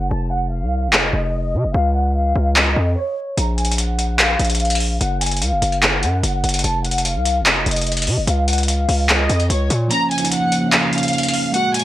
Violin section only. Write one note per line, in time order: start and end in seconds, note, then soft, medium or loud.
0.11 0.29 A5 loud
0.32 0.49 F#5 medium
0.52 0.90 F5 medium
0.93 1.70 D#5 medium
1.74 1.92 F5 loud
1.95 2.12 F#5 medium
2.15 2.54 F5 medium
2.56 2.94 D#5 medium
2.97 3.14 C#5 medium
3.37 3.55 A#5 loud
3.58 3.75 G#5 medium
3.78 4.17 F#5 medium
4.19 4.97 F5 medium
5.01 5.18 F#5 loud
5.21 5.39 G#5 medium
5.42 5.80 F5 medium
5.83 6.60 F#5 medium
6.64 6.82 A5 loud
6.85 7.02 F#5 medium
7.05 7.43 F5 loud
7.46 8.23 D#5 medium
8.27 8.45 F5 loud
8.48 8.65 F#5 medium
8.68 9.07 F5 medium
9.09 9.47 D#5 medium
9.50 9.68 C#5 medium
9.91 10.08 A#5 loud
10.11 10.29 G#5 medium
10.32 10.70 F#5 medium
10.72 11.50 F5 medium
11.54 11.72 F#5 loud
11.74 11.84 G#5 medium